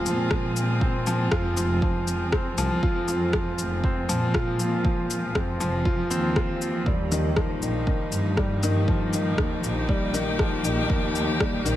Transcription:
Already playing: grand piano F3 C4 F4, string quartet F3 G#3 C4 G#4
0.06 double bass section A#2, grand piano F3, shaker
0.31 grand piano F3, kick, cross-stick
0.56 shaker
0.81 grand piano C4, kick
1.06 grand piano F3, shaker
1.31 double bass section F2, grand piano F4, kick, cross-stick
1.57 double bass section F1, grand piano F3, shaker
1.82 grand piano F3, kick
2.07 shaker
2.32 grand piano C4, kick, cross-stick
2.58 double bass section C2, grand piano F3, shaker
2.83 double bass section F2, grand piano F4, kick
3.08 grand piano F3, shaker
3.33 grand piano F3, kick, cross-stick
3.58 double bass section F1, shaker
3.84 grand piano C4, kick
4.08 double bass section A#2, grand piano F3, shaker
4.34 grand piano F4, kick, cross-stick
4.59 grand piano F3, shaker
4.85 grand piano F3, kick
5.10 shaker
5.35 double bass section F2, grand piano C4, kick, cross-stick
5.60 double bass section F1, grand piano F3, shaker
5.85 grand piano F4, kick
6.10 double bass section D#2, grand piano C4, shaker
6.36 grand piano F4, kick, cross-stick
6.61 shaker
6.86 double bass section D#2, grand piano G3, kick
7.12 grand piano D#3, shaker
7.30 string quartet D#4
7.36 grand piano F3, string quartet A#3, kick, cross-stick
7.61 double bass section A#1, grand piano D#3, shaker
7.87 grand piano D#3, kick
8.12 double bass section G2, shaker
8.37 grand piano G3, kick, cross-stick
8.63 grand piano D#3, string quartet G4, shaker
8.88 grand piano F3, kick
9.13 grand piano D#3, shaker
9.38 double bass section D#2, grand piano D#3, kick, cross-stick
9.64 double bass section A#1, shaker
9.89 grand piano G3, kick
10.14 grand piano D#3, shaker
10.39 grand piano F3, kick, cross-stick
10.64 double bass section A#1, grand piano D#3, shaker
10.90 double bass section D#2, grand piano D#3, kick
11.15 shaker
11.40 grand piano G3, kick, cross-stick
11.65 double bass section A#1, grand piano D#3, shaker

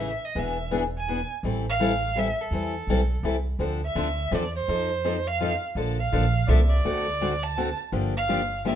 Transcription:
Already playing: upright bass A1, violin E5
0.00 steel-string acoustic guitar C#3 E3 A3 C#4 G#4
0.25 violin D#5
0.35 upright bass E1, steel-string acoustic guitar E3 B3 D4 G#4
0.39 violin E5
0.71 steel-string acoustic guitar E3 B3 D4 G#4
0.98 violin G#5
1.08 steel-string acoustic guitar E3 B3 D4 G#4
1.43 upright bass A1, steel-string acoustic guitar E3 G3 C4 E4 A4
1.69 violin F5
1.80 steel-string acoustic guitar E3 G3 C4 E4 A4
2.16 steel-string acoustic guitar E3 G3 C4 E4 A4, violin E5
2.41 violin A4
2.51 upright bass E2, steel-string acoustic guitar E3 G3 C4 E4 A4
2.87 upright bass B1, steel-string acoustic guitar E3 G3 C4 E4 A4
3.23 upright bass C2, steel-string acoustic guitar E3 G3 C4 E4 A4
3.59 upright bass D2, steel-string acoustic guitar D3 F3 C4 D4 A4
3.86 violin E5
3.95 upright bass D2, steel-string acoustic guitar D3 F3 C4 D4 A4
4.31 upright bass E2, steel-string acoustic guitar D3 F3 C4 D4 A4, violin D5
4.56 violin C5
4.68 upright bass F2, steel-string acoustic guitar F3 C4 D#4 A4
5.04 steel-string acoustic guitar F3 C4 D#4 A4
5.27 violin F5
5.41 steel-string acoustic guitar F3 C4 D#4 A4
5.75 upright bass A#1, steel-string acoustic guitar D3 F3 A#3 D4 A4
6.01 violin F5
6.12 upright bass A#1, steel-string acoustic guitar D3 F3 A#3 D4 A4
6.47 upright bass C2, steel-string acoustic guitar D3 F3 A#3 D4 A4, violin D5 E5
6.70 violin D5
6.84 upright bass D2, steel-string acoustic guitar D3 A3 C4 F#4 A4
7.21 steel-string acoustic guitar D3 A3 C4 F#4 A4
7.44 violin A5
7.57 steel-string acoustic guitar D3 A3 C4 F#4 A4
7.92 upright bass G1, steel-string acoustic guitar D3 F3 A#3 D4 G4
8.17 violin F5
8.29 steel-string acoustic guitar D3 F3 A#3 D4 G4
8.65 steel-string acoustic guitar D3 F3 A#3 D4 G4, violin E5

